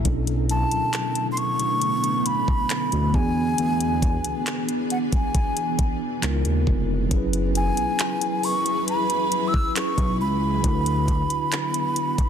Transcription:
0.02 B1 B2 D3 F#3 A3 B3 C#4, kick, closed hi-hat
0.07 D4 E4 A4
0.27 closed hi-hat
0.49 A5, closed hi-hat
0.71 D2, closed hi-hat
0.93 clap, closed hi-hat
1.15 closed hi-hat
1.32 C6
1.37 C#6, closed hi-hat
1.59 closed hi-hat
1.82 closed hi-hat
2.04 closed hi-hat
2.26 B5, closed hi-hat
2.48 kick
2.70 clap, closed hi-hat
2.92 D2, closed hi-hat
3.11 E2 E3 B3 D4 G#4 G#5, kick
3.17 F#4 G#4
3.58 E2, closed hi-hat
3.81 closed hi-hat
4.02 kick, closed hi-hat
4.24 C#2, closed hi-hat
4.47 clap, closed hi-hat
4.69 closed hi-hat
4.90 F#5, closed hi-hat
5.12 G#5, kick, closed hi-hat
5.35 kick, closed hi-hat
5.57 closed hi-hat
5.79 kick, closed hi-hat
6.22 C#2 C#3 G#3 B3 D#4 F4 A#4, clap, closed hi-hat
6.45 D#2, closed hi-hat
6.67 F1, kick
7.08 F#1 F#3 C#4 E4 G#4 B4, kick, closed hi-hat
7.14 G#4 B4
7.33 closed hi-hat
7.55 G#5, closed hi-hat
7.77 B1, closed hi-hat
7.99 clap, closed hi-hat
8.21 closed hi-hat
8.43 C#6, open hi-hat
8.66 closed hi-hat
8.88 B5, closed hi-hat
9.10 closed hi-hat
9.32 closed hi-hat
9.48 E6
9.54 kick
9.75 F#3 C#4 E4 G#4 B4 C#6, clap, closed hi-hat
9.98 B1, kick, closed hi-hat
10.21 C#2 B5
10.61 D2 D3 B3 D4 E4 F#4, kick, closed hi-hat
10.67 F#4 A#4
10.75 B4
10.86 closed hi-hat
11.08 kick, closed hi-hat
11.30 D2, closed hi-hat
11.52 clap, closed hi-hat
11.74 closed hi-hat
11.96 closed hi-hat
12.18 kick, closed hi-hat

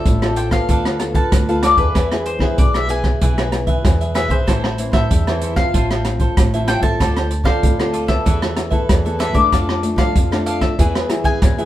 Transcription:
Already playing: C4 F4 A4 C5 D5 E5
0.05 A1 A2, kick, closed hi-hat
0.22 C4 F4 A4 C5 D5, cross-stick, closed hi-hat
0.36 F4 A4 C5 D5 G5, closed hi-hat
0.51 B3 F4 A4 F5, kick, cross-stick, closed hi-hat
0.69 D2 D3 D4 A4 B4 F5, kick, closed hi-hat
0.85 A4 B4 F5, cross-stick, closed hi-hat
0.99 B3 F4 A4, muted cavaquinho stroke, cross-stick, closed hi-hat
1.15 A4 B4 F5 A5, kick, closed hi-hat
1.32 D2 D3, kick, cross-stick, closed hi-hat
1.48 B3 F4 A4 B4 F5, closed hi-hat
1.63 D4 A4 B4 D5 F5, cross-stick, closed hi-hat
1.76 D#2 B3 E4 G#4 A4 B4 F5, kick, closed hi-hat
1.95 E2 E3 E4 G#4 B4 E5, kick, cross-stick, closed hi-hat
2.12 B3 E4 G#4 B4 E5, cross-stick, closed hi-hat
2.26 C5, muted cavaquinho stroke, closed hi-hat
2.39 E3 B3 E4 G#4 B4 E5, kick, cross-stick
2.58 B1 B2 D5, kick, closed hi-hat
2.74 G#4 B4 E5, cross-stick, closed hi-hat
2.89 B3 E4 G#4 B4 E5 G#5, closed hi-hat
3.04 kick, cross-stick, closed hi-hat
3.21 B1 E3 E4 G#4 B4 E5, kick, closed hi-hat
3.37 B3 E4 G#4 B4 E5, cross-stick, closed hi-hat
3.52 muted cavaquinho stroke, cross-stick, closed hi-hat
3.67 G#4 B4 E5, kick, closed hi-hat
3.85 E2 B2 B3 E4 G#4, kick, cross-stick, closed hi-hat
4.01 G#4 B4 E5, closed hi-hat
4.14 B3 E4 G#4 B4 E5, cross-stick, closed hi-hat
4.28 B1 G#4 B4 C5 E5, kick, closed hi-hat
4.47 A1 A2 E3 C4 E4 A4 C5 E5, kick, cross-stick, closed hi-hat
4.64 A4 C5 E5, cross-stick
4.78 E3 C4 E4, muted cavaquinho stroke, closed hi-hat
4.92 A2 A4 C5 E5, kick, cross-stick, closed hi-hat
5.11 E2 E3, kick, closed hi-hat
5.27 E3 C4 E4 A4 C5 E5, cross-stick, closed hi-hat
5.42 E4 A4 C5 E5, closed hi-hat
5.56 F3 C4 F5, kick, cross-stick, closed hi-hat
5.74 A1 A2 F4 A4 C5 E5, kick, closed hi-hat
5.91 A4 C5 E5, cross-stick, closed hi-hat
6.05 F3 C4, muted cavaquinho stroke, cross-stick, closed hi-hat
6.20 A4 C5, kick, closed hi-hat
6.37 A1 A2, kick, cross-stick, closed hi-hat
6.54 F3 C4 E4 A4 C5 E5, closed hi-hat
6.67 F4 A4 C5 E5 G5, cross-stick, closed hi-hat
6.81 A1 C4 F4 A4 C5 E5 A5, kick, closed hi-hat
7.00 D2 D3 F4 A4 C5 D5, kick, cross-stick, closed hi-hat
7.16 A4 C5 D5, cross-stick, closed hi-hat
7.31 muted cavaquinho stroke, closed hi-hat
7.44 D3 C4 F4 A4 C5 D5 F5, kick, cross-stick
7.63 D2 A2, kick, closed hi-hat
7.79 C4 F4 A4 C5 D5, cross-stick, closed hi-hat
7.93 F4 A4 C5 D5, closed hi-hat
8.08 B3 E4 A4 E5, kick, cross-stick, closed hi-hat
8.26 E2 E3 E4 A4 B4 E5, kick, closed hi-hat
8.42 A4 B4 E5, cross-stick, closed hi-hat
8.56 muted cavaquinho stroke, cross-stick, closed hi-hat
8.70 B3 E4 A4 B4 E5, kick, closed hi-hat
8.89 E2 E3, kick, cross-stick, closed hi-hat
9.05 B3 E4 A4 B4 E5, closed hi-hat
9.19 E4 A4 B4 E5, cross-stick, closed hi-hat
9.33 E2 A3 D4 A4 B4 D5 E5, kick, closed hi-hat
9.52 F2 F3 D4 A4 D5 F5, kick, cross-stick, closed hi-hat
9.69 A4 D5 F5, cross-stick
9.83 A3 D4 A4, muted cavaquinho stroke, closed hi-hat
9.96 F3 A4 D5 F5, kick, cross-stick, closed hi-hat
10.15 F2 F3, kick, closed hi-hat
10.31 A3 D4 A4 D5 F5, cross-stick, closed hi-hat
10.46 D4 A4 D5 F5, closed hi-hat
10.61 E5, kick, cross-stick, closed hi-hat
10.78 E2 E3 B3 E4 G#4 B4 E5, kick, closed hi-hat
10.95 G#4 B4 E5, cross-stick, closed hi-hat
11.09 B3 E4 G#4, muted cavaquinho stroke, cross-stick, closed hi-hat
11.24 G#4 B4 E5 G#5, kick, closed hi-hat
11.42 E2 B2, kick, cross-stick, closed hi-hat
11.58 B3 E4 G#4 B4 E5, closed hi-hat

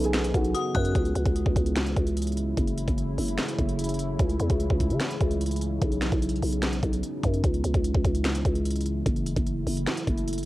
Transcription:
Already playing: B1 C#3 F#3 B3 D#4
0.04 G#4 G#5, closed hi-hat
0.13 finger snap, snare, closed hi-hat
0.24 closed hi-hat
0.34 B1 F#4 F#5, kick, closed hi-hat
0.44 closed hi-hat
0.55 F#4 F#5 D#6, closed hi-hat
0.75 F#2 F#6, kick, closed hi-hat
0.85 closed hi-hat
0.95 C#2 C#3 E3 G#3 E4, kick, closed hi-hat
1.05 closed hi-hat
1.15 C#2, closed hi-hat
1.26 C#2, kick, closed hi-hat
1.36 closed hi-hat
1.46 C#2, kick
1.56 C#2, kick, closed hi-hat
1.66 closed hi-hat
1.76 finger snap, snare, closed hi-hat
1.86 closed hi-hat
1.96 C#2, kick, closed hi-hat
2.07 closed hi-hat
2.17 closed hi-hat
2.22 closed hi-hat
2.27 closed hi-hat
2.32 closed hi-hat
2.37 closed hi-hat
2.57 F#1 F#3 A3, kick, closed hi-hat
2.67 closed hi-hat
2.78 closed hi-hat
2.88 F#1, kick, closed hi-hat
2.98 closed hi-hat
3.18 F#1, open hi-hat
3.28 closed hi-hat
3.38 finger snap, snare, closed hi-hat
3.48 closed hi-hat
3.59 F#1, kick, closed hi-hat
3.69 closed hi-hat
3.79 closed hi-hat
3.84 closed hi-hat
3.89 closed hi-hat
3.94 closed hi-hat
3.99 closed hi-hat
4.19 C#2 E3 G#3, kick, closed hi-hat
4.30 closed hi-hat
4.40 E2, closed hi-hat
4.50 C#2, kick, closed hi-hat
4.60 closed hi-hat
4.70 C#2, kick
4.80 kick, closed hi-hat
4.90 C#3, closed hi-hat
5.00 finger snap, snare, closed hi-hat
5.11 closed hi-hat
5.21 C#2, kick, closed hi-hat
5.31 closed hi-hat
5.41 closed hi-hat
5.46 closed hi-hat
5.51 closed hi-hat
5.56 closed hi-hat
5.61 closed hi-hat
5.82 B1 F#3 B3 D#4, kick, closed hi-hat
5.92 closed hi-hat
6.01 finger snap, snare, closed hi-hat
6.12 B1, kick, closed hi-hat
6.22 closed hi-hat
6.29 closed hi-hat
6.36 closed hi-hat
6.42 B1, open hi-hat
6.53 closed hi-hat
6.62 finger snap, snare, closed hi-hat
6.73 closed hi-hat
6.83 B1, kick, closed hi-hat
6.93 closed hi-hat
7.03 closed hi-hat
7.23 F#2, kick, closed hi-hat
7.34 closed hi-hat
7.44 C#2 E3 G#3 E4, kick, closed hi-hat
7.54 closed hi-hat
7.64 C#2, closed hi-hat
7.74 C#2, kick, closed hi-hat
7.84 closed hi-hat
7.94 C#2, kick
8.05 C#2, kick, closed hi-hat
8.15 closed hi-hat
8.24 finger snap, snare, closed hi-hat
8.35 closed hi-hat
8.45 C#2, kick, closed hi-hat
8.55 closed hi-hat
8.65 closed hi-hat
8.70 closed hi-hat
8.76 closed hi-hat
8.81 closed hi-hat
8.86 closed hi-hat
9.06 F#1 F#3 A3 E4, kick, closed hi-hat
9.16 closed hi-hat
9.26 closed hi-hat
9.36 F#1, kick, closed hi-hat
9.46 closed hi-hat
9.67 F#1, open hi-hat
9.77 closed hi-hat
9.86 finger snap, snare, closed hi-hat
9.97 closed hi-hat
10.07 F#1, kick, closed hi-hat
10.17 closed hi-hat
10.28 closed hi-hat
10.33 closed hi-hat
10.38 closed hi-hat

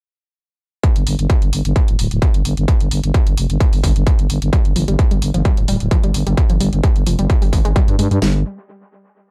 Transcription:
0.84 kick, closed hi-hat
0.96 G1, closed hi-hat
1.07 G1, open hi-hat
1.19 G1, closed hi-hat
1.30 kick, closed hi-hat
1.42 G1, closed hi-hat
1.53 G1, open hi-hat
1.65 G1, closed hi-hat
1.76 kick, closed hi-hat
1.88 D1, closed hi-hat
1.99 D1, open hi-hat
2.11 D1, closed hi-hat
2.22 kick, closed hi-hat
2.34 G1, closed hi-hat
2.45 G1, open hi-hat
2.57 G1, closed hi-hat
2.68 kick, closed hi-hat
2.80 G1, closed hi-hat
2.91 G1, open hi-hat
3.03 G1, closed hi-hat
3.14 kick, closed hi-hat
3.27 G1, closed hi-hat
3.37 F1, open hi-hat
3.50 G1, closed hi-hat
3.60 kick, closed hi-hat
3.73 G1, open hi-hat
3.84 G1, kick, open hi-hat
3.96 G1, closed hi-hat
4.07 kick, closed hi-hat
4.19 G1, closed hi-hat
4.30 G1, open hi-hat
4.42 G1, closed hi-hat
4.53 G3, kick, closed hi-hat
4.65 G1, closed hi-hat
4.76 G1 F3, open hi-hat
4.88 G1 G3, closed hi-hat
4.99 kick, closed hi-hat
5.11 G1 G3, closed hi-hat
5.22 G1, open hi-hat
5.34 G1 F3, closed hi-hat
5.45 G3, kick, closed hi-hat
5.57 D1, closed hi-hat
5.68 D1 G3, open hi-hat
5.80 D1, closed hi-hat
5.91 F3, kick, closed hi-hat
6.04 G1 G3, closed hi-hat
6.14 G1, open hi-hat
6.27 G1 G3, closed hi-hat
6.37 kick, closed hi-hat
6.50 G1 F3, closed hi-hat
6.60 G1 G3, open hi-hat
6.73 G1, closed hi-hat
6.84 G3, kick, closed hi-hat
6.96 G1, closed hi-hat
7.07 F1 F3, open hi-hat
7.19 G1 G3, closed hi-hat
7.30 kick, closed hi-hat
7.42 G1 G3, open hi-hat
7.53 G#1, kick, open hi-hat
7.65 G#1 G#3, closed hi-hat
7.76 G3, kick, closed hi-hat
7.88 G2, closed hi-hat
7.99 G2 G#3, open hi-hat
8.11 G2 G3, closed hi-hat
8.22 G1 G3, snare, open hi-hat

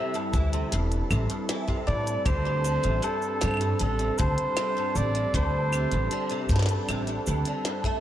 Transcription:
Already playing: C3 G3 C4 E4 A4 E5
0.14 G2, shaker
0.33 D2 E3, kick, shaker
0.53 C3, closed hi-hat, shaker
0.72 E1 G2, closed hi-hat, shaker
0.92 closed hi-hat, shaker
1.11 A1 C3, claves, shaker
1.30 G2, closed hi-hat, shaker
1.49 E3, snare, closed hi-hat, shaker
1.68 C3, kick
1.87 G2 A2 D5
2.07 closed hi-hat, shaker
2.25 D2 C3 G3 D4 C5, kick, closed hi-hat, claves, shaker
2.45 G2
2.64 D3, shaker
2.83 A1 C3, closed hi-hat, shaker
3.02 G2 A4, closed hi-hat, shaker
3.22 shaker
3.41 G2 C3, snare, claves, shaker
3.44 claves
3.48 claves
3.51 claves
3.54 claves
3.57 G2, closed hi-hat, claves, shaker
3.79 A1 D3 A4, closed hi-hat, shaker
3.99 C3, closed hi-hat, shaker
4.18 D2 G2 C5, kick, shaker
4.38 closed hi-hat
4.57 C3, snare, closed hi-hat, claves, shaker
4.77 G2
4.96 A1 D3 D5, shaker
5.15 C3, closed hi-hat, shaker
5.34 D2 G2 C5, kick, closed hi-hat, shaker
5.73 C3, claves, shaker
5.92 A1 G2, closed hi-hat, shaker
6.11 D3, closed hi-hat, shaker
6.30 C3, closed hi-hat, shaker
6.49 G2, kick, shaker
6.56 snare
6.59 snare
6.62 snare
6.66 snare, closed hi-hat, shaker
6.89 A1 C3, closed hi-hat, claves, shaker
7.07 G2, closed hi-hat, shaker
7.27 D2 G2, shaker
7.45 D3, closed hi-hat, shaker
7.65 G2, snare, closed hi-hat, shaker
7.84 A3, kick, closed hi-hat

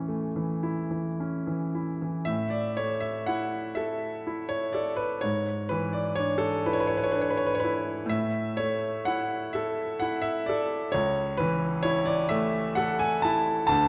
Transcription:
Already playing: A2 E3 C#4 C#5
0.08 A3
0.36 E3
0.63 E4
0.91 E3
1.20 C#4
1.47 E3
1.75 E4
2.02 E3
2.25 A2 E5
2.50 D5
2.77 A3 C#5
3.00 E5
3.26 E4 F#5
3.75 A4 E5
4.27 E4
4.49 C#5
4.73 A4 D5
4.96 B4
5.21 G#2 C#5
5.69 E3 B4
5.93 D5
6.15 D4 C#5
6.38 A4
6.66 E4 B4
6.73 C#5
6.80 B4
6.87 C#5
6.97 B4
7.03 C#5
7.12 D4 B4
7.21 C#5
7.30 B4
7.37 C#5
7.46 B4
7.55 C#5
7.60 B4
7.64 E4
8.06 A2 E5
8.57 A3 C#5
9.05 E4 F#5
9.53 A4 E5
10.00 E4 F#5
10.22 E5
10.46 A4 D5
10.92 C#2 C#5
11.37 E3 B4
11.83 E4 C#5
12.05 D5
12.29 A3 E5
12.75 A4 F#5
12.99 G#5
13.22 E4 A5
13.67 D2 A5

